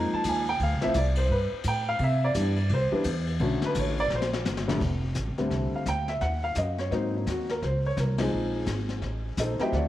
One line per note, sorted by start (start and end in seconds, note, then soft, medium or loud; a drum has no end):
0.00 0.11 F2 medium
0.00 0.43 F3 medium
0.00 0.43 G#3 medium
0.00 0.43 A#3 medium
0.00 0.44 D#4 medium
0.00 0.14 A#5 medium
0.13 0.26 A5 medium
0.13 muted upright bass stroke soft
0.24 0.59 D#2 medium
0.24 kick soft
0.24 hi-hat pedal medium
0.24 ride medium
0.29 0.49 G#5 medium
0.46 0.61 G5 medium
0.46 ride soft
0.59 0.74 D2 medium
0.59 0.84 F5 medium
0.59 kick soft
0.59 ride medium
0.73 0.83 C2 medium
0.81 0.94 A1 medium
0.81 0.94 F3 medium
0.81 0.94 A3 medium
0.81 0.94 C4 medium
0.81 0.94 E4 medium
0.81 0.96 E5 medium
0.81 snare medium
0.94 1.29 C2 loud
0.94 1.18 D5 medium
0.94 kick soft
0.94 hi-hat pedal medium
0.94 ride medium
1.15 1.30 C5 medium
1.15 ride medium
1.29 1.51 G2 medium
1.29 1.45 B4 medium
1.29 kick soft
1.52 muted upright bass stroke soft
1.64 1.99 A2 medium
1.64 kick soft
1.64 hi-hat pedal medium
1.64 ride medium
1.68 1.88 G5 loud
1.89 2.01 F5 loud
1.99 2.34 C3 medium
1.99 kick soft
1.99 ride medium
2.03 2.24 E5 medium
2.24 2.68 D5 medium
2.34 2.69 G2 loud
2.34 2.55 E3 medium
2.34 2.55 G3 medium
2.34 2.55 B3 medium
2.34 2.56 D4 medium
2.34 kick soft
2.34 hi-hat pedal medium
2.34 ride medium
2.56 ride soft
2.69 2.91 C2 medium
2.69 kick soft
2.69 ride medium
2.74 2.86 C5 loud
2.92 3.04 E3 medium
2.92 3.04 G3 medium
2.92 3.04 B3 medium
2.92 3.04 D4 medium
2.92 muted upright bass stroke soft
3.04 3.39 E2 medium
3.04 kick soft
3.04 hi-hat pedal medium
3.04 ride medium
3.27 ride medium
3.39 3.61 B1 medium
3.39 3.93 D3 medium
3.39 3.94 F#3 medium
3.39 3.94 A3 medium
3.39 3.94 C#4 medium
3.39 kick soft
3.39 ride medium
3.62 3.77 B4 medium
3.62 muted upright bass stroke soft
3.62 snare medium
3.75 4.10 A1 loud
3.75 kick soft
3.75 hi-hat pedal medium
3.75 ride medium
3.79 3.99 C#5 medium
3.97 4.12 D5 loud
3.97 ride medium
4.10 4.45 A#1 medium
4.10 snare medium
4.15 4.27 C5 medium
4.22 snare medium
4.33 snare medium
4.45 4.80 G1 medium
4.45 snare medium
4.45 hi-hat pedal medium
4.57 snare medium
4.68 4.80 F2 medium
4.68 4.80 D3 medium
4.68 4.80 G3 medium
4.68 4.80 A3 medium
4.68 4.80 D4 medium
4.68 snare loud
4.80 5.15 F1 medium
4.80 brush sweep soft
4.80 kick medium
4.80 snare soft
4.80 crash medium
5.15 5.29 A1 medium
5.15 kick soft
5.15 snare medium
5.15 hi-hat pedal medium
5.27 5.39 F1 medium
5.38 5.50 D1 medium
5.38 5.84 D3 medium
5.38 5.84 G3 medium
5.38 5.84 A3 medium
5.38 5.84 C4 medium
5.38 snare soft
5.50 5.71 C2 medium
5.50 brush sweep soft
5.50 kick soft
5.50 snare soft
5.73 5.87 F5 medium
5.73 muted upright bass stroke soft
5.86 6.20 D2 medium
5.86 6.09 G5 medium
5.86 kick soft
5.86 snare medium
5.86 hi-hat pedal medium
6.08 6.21 E5 medium
6.08 snare soft
6.21 6.55 D#2 medium
6.21 6.43 F#5 medium
6.21 brush sweep soft
6.21 kick soft
6.21 snare soft
6.44 6.56 F5 medium
6.55 6.90 F#2 medium
6.55 6.79 D#5 medium
6.55 kick soft
6.55 snare medium
6.55 hi-hat pedal medium
6.78 6.91 C#5 medium
6.78 snare soft
6.91 7.25 G#2 medium
6.91 7.44 F#3 medium
6.91 7.44 A#3 medium
6.91 7.44 C4 medium
6.91 7.16 D#4 medium
6.91 brush sweep soft
6.91 kick soft
6.91 snare soft
6.95 7.15 C5 medium
7.12 7.14 D4 soft
7.17 7.28 D#4 soft
7.26 7.61 D#2 medium
7.26 7.50 F#4 medium
7.26 kick soft
7.26 snare medium
7.26 hi-hat pedal medium
7.49 7.62 A#4 medium
7.49 snare soft
7.62 7.96 C#2 medium
7.62 7.85 C5 medium
7.62 brush sweep soft
7.62 kick soft
7.62 snare soft
7.87 7.98 C#5 medium
7.97 8.31 C2 medium
7.97 8.20 A#4 medium
7.97 kick soft
7.97 snare medium
7.97 hi-hat pedal soft
8.18 8.65 F3 medium
8.18 8.65 G#3 medium
8.18 8.65 C4 medium
8.18 8.65 D#4 medium
8.18 8.65 G#4 medium
8.18 snare medium
8.18 ride medium
8.31 8.66 A#1 medium
8.31 brush sweep soft
8.66 9.01 G#1 medium
8.66 kick soft
8.66 snare medium
8.66 hi-hat pedal medium
8.89 snare soft
9.02 9.36 A1 medium
9.02 brush sweep soft
9.02 kick soft
9.02 snare soft
9.37 9.58 A#1 medium
9.37 9.60 D#4 medium
9.37 9.60 A4 medium
9.37 9.60 C5 medium
9.37 9.60 D#5 medium
9.37 kick soft
9.37 snare medium
9.37 hi-hat pedal medium
9.59 9.88 F#3 medium
9.59 9.88 A3 medium
9.59 9.88 C4 medium
9.59 9.88 E4 medium
9.59 9.74 G4 medium
9.59 9.73 C5 medium
9.59 9.74 D#5 medium
9.59 9.73 G5 medium
9.59 muted upright bass stroke soft
9.59 snare soft
9.72 9.88 D2 medium
9.72 9.88 F#4 medium
9.72 9.88 C5 medium
9.72 9.88 D5 medium
9.72 9.88 F#5 medium
9.72 brush sweep soft
9.72 kick soft
9.72 snare soft